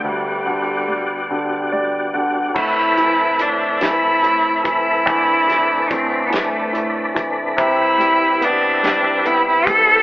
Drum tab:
CC |------|x-----|------|------|
HH |------|-xxxxx|xxxxxx|xxxxxx|
SD |------|---o--|-o-o--|---o--|
BD |------|o----o|o-o--o|o----o|